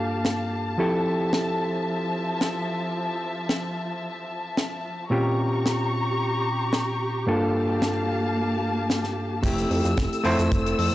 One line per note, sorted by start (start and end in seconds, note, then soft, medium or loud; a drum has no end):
0.00 0.75 G2 medium
0.00 0.76 A#3 medium
0.00 0.77 A#3 medium
0.00 0.76 D4 medium
0.00 0.76 F4 medium
0.00 0.77 G4 medium
0.00 0.76 A4 medium
0.00 0.77 F5 medium
0.00 5.07 A5 medium
0.25 snare loud
0.78 5.08 F3 medium
0.78 5.07 F3 medium
0.78 5.08 C4 medium
0.78 5.08 E4 medium
0.78 5.08 G4 medium
0.78 5.09 A4 medium
0.78 5.07 E5 medium
1.33 snare loud
2.41 snare loud
3.49 snare loud
4.57 snare medium
5.10 7.24 A#2 medium
5.10 7.24 C4 medium
5.10 7.24 C#4 medium
5.10 7.25 F4 medium
5.10 9.40 G4 medium
5.10 7.25 G4 medium
5.10 7.25 A#5 medium
5.10 7.25 C#6 medium
5.66 snare loud
6.73 snare loud
7.26 9.40 G2 medium
7.26 9.40 A#3 medium
7.26 9.42 A#3 medium
7.26 9.41 D4 medium
7.26 9.41 F4 medium
7.26 9.41 A4 medium
7.26 9.41 F5 medium
7.26 9.41 A5 medium
7.82 snare loud
8.90 snare loud
9.04 snare soft
9.43 9.65 F1 loud
9.43 10.21 A3 medium
9.43 10.22 C4 medium
9.43 10.22 E4 medium
9.43 10.22 G4 medium
9.43 10.95 A4 medium
9.43 10.95 E6 medium
9.43 kick loud
9.43 closed hi-hat loud
9.43 crash loud
9.43 shaker medium
9.58 closed hi-hat medium
9.58 shaker soft
9.70 9.82 F2 loud
9.70 open hi-hat medium
9.85 9.95 F2 loud
9.85 closed hi-hat medium
9.85 shaker medium
9.97 10.09 F1 loud
9.97 kick loud
9.97 snare loud
9.97 closed hi-hat loud
9.97 shaker medium
10.13 closed hi-hat medium
10.13 shaker soft
10.24 10.36 F2 medium
10.24 10.95 A3 medium
10.24 10.95 C4 medium
10.24 10.95 E4 medium
10.24 10.95 C5 loud
10.24 open hi-hat medium
10.39 10.49 F2 loud
10.39 closed hi-hat medium
10.39 shaker medium
10.51 10.74 F1 loud
10.51 kick loud
10.51 closed hi-hat medium
10.51 shaker medium
10.66 closed hi-hat medium
10.66 shaker medium
10.78 10.90 F2 loud
10.78 open hi-hat loud